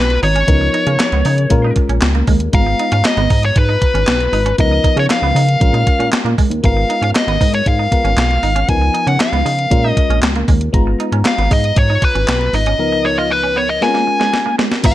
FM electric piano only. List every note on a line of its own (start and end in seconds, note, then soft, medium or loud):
0.00 0.44 G#3 medium
0.00 0.44 B3 medium
0.00 0.44 F4 medium
0.00 0.45 A#5 medium
0.47 0.54 E3 soft
0.47 1.48 B3 medium
0.47 1.49 D#4 medium
0.47 1.49 A#4 medium
0.53 1.51 F3 medium
1.50 2.51 G#3 medium
1.50 2.51 C#4 medium
1.50 2.51 F4 medium
1.50 2.51 A#4 medium
2.53 4.54 G#3 medium
2.53 4.54 B3 medium
2.53 4.55 F4 medium
2.53 4.55 A#5 medium
4.58 5.59 F3 medium
4.58 5.59 B3 medium
4.58 5.59 D#4 medium
4.58 5.60 A#4 medium
5.60 6.61 G#3 medium
5.60 6.61 C#4 medium
5.60 6.62 F4 medium
5.60 6.62 A#4 medium
6.63 7.89 G#3 medium
6.63 7.89 B3 medium
6.63 7.89 F4 medium
6.63 7.90 A#4 medium
7.91 8.68 G#3 soft
7.91 8.67 B3 soft
7.91 8.69 F4 soft
7.91 8.68 A#4 soft
8.68 9.69 F3 medium
8.68 9.69 B3 medium
8.68 9.69 D#4 medium
8.68 9.70 A#4 medium
9.70 10.71 G#3 medium
9.70 10.71 C#4 medium
9.70 10.72 F4 medium
9.70 10.72 A#4 medium
10.73 12.74 G#3 medium
10.73 12.75 B3 medium
10.73 12.75 F4 medium
10.73 12.75 A#5 medium
12.78 13.79 C#2 medium
12.78 13.79 F3 medium
12.78 13.80 B3 medium
12.78 13.80 D#4 medium
12.78 13.80 A#4 medium
13.81 14.82 G#3 medium
13.81 13.88 B3 soft
13.81 14.82 F4 medium
13.81 14.83 A#4 medium
13.88 14.85 C#4 medium
14.83 14.94 G#3 medium
14.83 14.94 B3 medium
14.83 14.94 F4 medium
14.83 14.94 A#5 medium